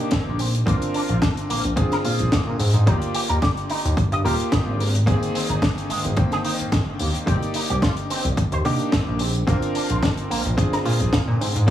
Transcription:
Already playing: A#3 D4 D#4 G4
0.11 C4, kick, snare, closed hi-hat
0.27 A#1
0.39 C4, open hi-hat
0.55 closed hi-hat
0.66 A#1 A#3 C4 D4 F4 A#4, kick, closed hi-hat
0.82 closed hi-hat
0.94 D4, open hi-hat
1.09 A#1 F4, closed hi-hat
1.22 D4, kick, snare, closed hi-hat
1.37 closed hi-hat
1.50 A#1 A#3, open hi-hat
1.64 A#1, closed hi-hat
1.76 C4 D4 F4 G#4, kick, closed hi-hat
1.92 A#4, snare, closed hi-hat
2.05 A#2 F4, open hi-hat
2.19 A#1, closed hi-hat
2.32 A#3, kick, snare, closed hi-hat
2.47 A#2
2.59 G#2 C4, open hi-hat
2.74 G#2, closed hi-hat
2.86 D#2 A#3 D#4 F4 G4 D5, kick, closed hi-hat
3.02 closed hi-hat
3.14 G4, open hi-hat
3.29 D#2 A#4, closed hi-hat
3.42 G4, kick, snare, closed hi-hat
3.57 closed hi-hat
3.70 D#4, open hi-hat
3.85 D#2, closed hi-hat
3.97 G2, kick, closed hi-hat
4.12 G2 D#5, closed hi-hat
4.24 D#1 A#3 F4 G4 A#4, open hi-hat
4.40 closed hi-hat
4.52 D#4, kick, snare, closed hi-hat
4.67 G#1
4.80 A#3, open hi-hat
4.95 closed hi-hat
5.06 G#1 D#3 G#3 A#3 C4 G#4, kick, closed hi-hat
5.23 closed hi-hat
5.35 C4, open hi-hat
5.49 G#1 D#4, closed hi-hat
5.62 D4, kick, snare, closed hi-hat
5.78 closed hi-hat
5.90 G#1 G#3, open hi-hat
6.05 G#1, closed hi-hat
6.16 D#3 A#3 C4 G5, kick, closed hi-hat
6.32 G#4, snare, closed hi-hat
6.45 D#4, open hi-hat
6.59 G#1, closed hi-hat
6.72 G#1 G#3, kick, snare, closed hi-hat
6.99 D#2 A#3, open hi-hat
7.15 closed hi-hat
7.26 C2 A#3 C4 D#4 G4 D5, kick, closed hi-hat
7.43 closed hi-hat
7.54 D#4, open hi-hat
7.70 C2 G4, closed hi-hat
7.82 F4, kick, snare, closed hi-hat
7.97 closed hi-hat
8.10 C4, open hi-hat
8.25 C2, closed hi-hat
8.37 D#2, kick, closed hi-hat
8.52 D#2 C5, closed hi-hat
8.65 C3 A#3 D4 D#4 G4, open hi-hat
8.80 closed hi-hat
8.92 C4, kick, snare, closed hi-hat
9.07 A#1
9.19 C4, open hi-hat
9.35 closed hi-hat
9.47 A#1 A#3 C4 D4 F4 A#4, kick, closed hi-hat
9.62 closed hi-hat
9.75 D4, open hi-hat
9.90 A#1 F4, closed hi-hat
10.03 D4, kick, snare, closed hi-hat
10.17 closed hi-hat
10.30 A#1 A#3, open hi-hat
10.45 A#1, closed hi-hat
10.57 C4 D4 F4 G#4, kick, closed hi-hat
10.73 A#4, snare, closed hi-hat
10.85 A#2 F4, open hi-hat
11.00 A#1, closed hi-hat
11.13 A#3, kick, snare, closed hi-hat
11.28 A#2
11.41 G#2 C4, open hi-hat
11.56 G#2, closed hi-hat
11.67 A#3 D5

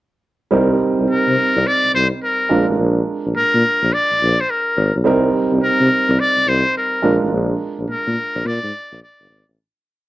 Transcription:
0.51 C2 G3 C4 D#4 A#4
0.99 C2
1.09 C3 A#4
1.28 C3
1.56 C2
1.67 D5
1.85 C2
1.94 C2 C5
2.24 A#4
2.49 A#1 G#3 D4 F4 A#4
2.69 A1
2.79 A#1
3.26 A#1
3.35 A#2 A#4
3.54 A#2
3.83 A#1
3.93 D5
4.11 A#1
4.20 A#1
4.41 C5
4.50 A#4
4.77 G#1
4.96 B1
5.04 C2 G3 C4 D#4 A#4
5.52 C2
5.62 C3 A#4
5.80 C3
6.09 C2
6.20 D5
6.37 C2
6.46 C2 C5
6.77 A#4
7.02 A#1 G#3 D4 F4 A#4
7.22 A1
7.32 A#1
7.79 A#1
7.88 A#2 A#4
8.07 A#2
8.35 A#1
8.45 A#2 D5
8.64 G#2
8.92 A#1
9.03 D5
9.20 G1
9.30 G#1
9.48 A1

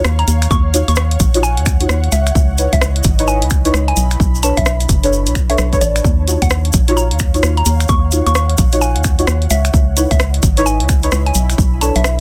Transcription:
Already playing: D#4 F4 F#4 C#5 F5
0.04 D#2, cross-stick, shaker
0.19 F#5 A#5, closed hi-hat
0.28 D#2, closed hi-hat, shaker
0.42 finger snap, closed hi-hat, shaker
0.51 D#2 C#6, kick, shaker
0.74 D#4 F4 F#4 C#5, closed hi-hat, shaker
0.88 D#2 C#6, closed hi-hat, shaker
0.96 C#6, cross-stick, shaker
1.11 closed hi-hat
1.20 A#1, kick, closed hi-hat, shaker
1.34 D#4 F4 F#4 C#5, closed hi-hat, shaker
1.43 G#5, shaker
1.57 D#2, closed hi-hat
1.66 finger snap, kick, closed hi-hat, shaker
1.80 D#4 F4 F#4 C#5, closed hi-hat, shaker
1.89 D#2, cross-stick, shaker
2.04 closed hi-hat
2.12 C#2 E4 E5, closed hi-hat, shaker
2.27 finger snap, closed hi-hat, shaker
2.31 D#5
2.35 C#2, kick, shaker
2.58 D#4 E4 B4 C#5, closed hi-hat, shaker
2.73 C#2 E5, kick, closed hi-hat, shaker
2.81 cross-stick, shaker
2.96 B5, closed hi-hat
3.04 G#1, kick, closed hi-hat, shaker
3.19 D#4 E4 B4 C#5, closed hi-hat, shaker
3.28 G#5, shaker
3.42 C#2, closed hi-hat
3.50 finger snap, kick, closed hi-hat, shaker
3.65 D#4 E4 B4 C#5, closed hi-hat, shaker
3.74 C#2, cross-stick, shaker
3.88 G#5, closed hi-hat
3.96 B1 D4, closed hi-hat, shaker
4.11 finger snap, closed hi-hat, shaker
4.20 B1, kick, shaker
4.33 C#5, shaker
4.43 D4 A4 B4 C#5 A5, closed hi-hat, shaker
4.57 B1 E5, kick, closed hi-hat, shaker
4.66 E5, cross-stick, shaker
4.80 closed hi-hat, shaker
4.89 F#1 A5, kick, closed hi-hat, shaker
5.04 D4 A4 B4 C#5, closed hi-hat, shaker
5.13 shaker
5.26 B1, closed hi-hat, shaker
5.35 finger snap, kick, closed hi-hat, shaker
5.50 D4 A4 B4 C#5 E5, closed hi-hat, shaker
5.58 B1, cross-stick, shaker
5.73 D4 A4 B4 C#5, kick, closed hi-hat, shaker
5.81 A1 D5, closed hi-hat, shaker
5.96 finger snap, closed hi-hat, shaker
6.05 D#2 F5, kick, shaker
6.28 D#4 F4 F#4 C#5, closed hi-hat, shaker
6.42 D#2 F#5, kick, closed hi-hat, shaker
6.50 cross-stick, shaker
6.65 closed hi-hat
6.73 A#1, kick, closed hi-hat, shaker
6.88 D#4 F4 F#4 C#5, closed hi-hat, shaker
6.97 A#5, shaker
7.09 D#2 F#5, closed hi-hat
7.19 finger snap, kick, closed hi-hat, shaker
7.34 D#4 F4 F#4 C#5, closed hi-hat, shaker
7.43 D#2, cross-stick, shaker
7.57 A#5, closed hi-hat
7.66 D#2, closed hi-hat, shaker
7.80 finger snap, closed hi-hat, shaker
7.88 D#2 C#6, kick, shaker
8.12 D#4 F4 F#4 C#5, closed hi-hat, shaker
8.27 D#2 C#6, closed hi-hat, shaker
8.35 C#6, cross-stick, shaker
8.50 closed hi-hat
8.58 A#1, kick, closed hi-hat, shaker
8.72 D#4 F4 F#4 C#5, closed hi-hat, shaker
8.81 G#5, shaker
8.96 D#2, closed hi-hat
9.04 finger snap, kick, closed hi-hat, shaker
9.19 D#4 F4 F#4 C#5, closed hi-hat, shaker
9.27 D#2, cross-stick, shaker
9.42 closed hi-hat
9.50 C#2 E4 E5, closed hi-hat, shaker
9.65 finger snap, closed hi-hat, shaker
9.74 C#2, kick, shaker
9.86 D#5
9.97 D#4 E4 B4 C#5, closed hi-hat, shaker
10.11 C#2 E5, kick, closed hi-hat, shaker
10.19 cross-stick, shaker
10.34 B5, closed hi-hat
10.43 G#1, kick, closed hi-hat, shaker
10.57 D#4 E4 B4 C#5, closed hi-hat, shaker
10.66 G#5, shaker
10.80 C#2, closed hi-hat
10.89 finger snap, kick, closed hi-hat, shaker
11.03 D#4 E4 B4 C#5, closed hi-hat, shaker
11.12 C#2, cross-stick, shaker
11.26 G#5, closed hi-hat
11.35 B1 D4, closed hi-hat, shaker
11.50 finger snap, closed hi-hat, shaker
11.58 B1, kick, shaker
11.81 D4 A4 B4 C#5 A5, closed hi-hat, shaker
11.95 B1 E5, closed hi-hat, shaker
12.04 E5, cross-stick, shaker

